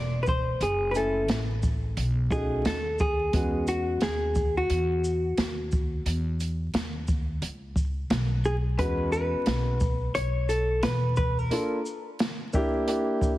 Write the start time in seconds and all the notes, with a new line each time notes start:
Already playing: E1 D5
0.23 B4, shaker
0.27 C5, kick
0.60 F#1 G#4, closed hi-hat
0.91 A3 C#4 E4 B4, closed hi-hat, shaker
0.96 A4 G#5
1.28 A1, snare, closed hi-hat
1.63 kick, shaker
1.97 B1, closed hi-hat
2.31 A3 C#4 D#4 F#4 G#4, kick, shaker
2.65 D#2 A4, snare, closed hi-hat
2.99 G#4, kick, shaker
3.33 E2 G#3 B3 C#4 F#4, kick, closed hi-hat
3.68 F#4, closed hi-hat, shaker
4.01 D#2 G#4, snare, closed hi-hat
4.35 kick, shaker
4.57 F#4
4.70 E2, closed hi-hat
5.04 shaker
5.38 D#2, snare, closed hi-hat
5.72 kick, shaker
6.06 E2, closed hi-hat
6.40 closed hi-hat, shaker
6.74 D#2, snare, closed hi-hat
7.08 kick, shaker
7.42 C#2, closed hi-hat
7.76 kick, shaker
8.10 B1, snare, closed hi-hat
8.45 G#4, shaker
8.78 G#3 B3 C#4 F#4 B4, kick, closed hi-hat
9.12 B4, shaker
9.33 muted upright bass stroke
9.46 B1, snare, closed hi-hat
9.80 kick, shaker
10.15 B1 C#5, closed hi-hat
10.49 A4, closed hi-hat, shaker
10.83 E1 B4, snare, closed hi-hat
11.17 B4, kick, shaker
11.39 A#4
11.50 A#3 D4 F4 A4, closed hi-hat
11.86 shaker
12.19 snare, closed hi-hat
12.53 A#3 D4 E4 G4, kick, shaker
12.87 A#3 D4 E4 G4, closed hi-hat
13.21 kick, shaker